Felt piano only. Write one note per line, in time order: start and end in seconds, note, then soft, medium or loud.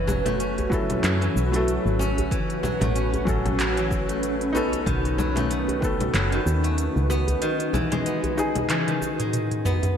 0.70 1.48 F#3 medium
0.70 1.49 E4 medium
0.74 1.50 A4 medium
1.52 2.29 F#3 medium
1.52 2.30 E4 medium
1.52 2.31 A4 medium
3.25 4.50 F#3 medium
3.25 4.51 C#4 medium
3.29 4.52 A4 medium
4.53 5.79 B3 medium
4.53 5.78 D#4 loud
4.57 5.80 A4 loud
5.81 6.59 D#3 medium
5.81 6.60 B3 medium
5.81 6.61 A4 loud
8.37 9.62 D#4 medium
8.37 9.63 G#4 loud